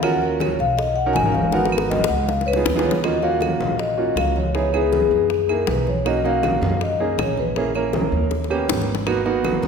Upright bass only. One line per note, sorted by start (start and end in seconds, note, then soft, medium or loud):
0.00 0.53 D#2 medium
0.59 1.11 B1 medium
1.15 2.03 G#1 medium
2.09 2.62 C#2 medium
2.66 3.54 D#2 medium
3.60 4.12 A#1 medium
4.16 5.04 C#2 medium
5.11 5.63 F#2 medium
5.68 6.56 B1 medium
6.61 7.14 F#2 medium
7.18 8.06 A#1 medium
8.12 8.64 D#2 medium
8.68 9.57 G#1 medium
9.62 9.68 D#2 medium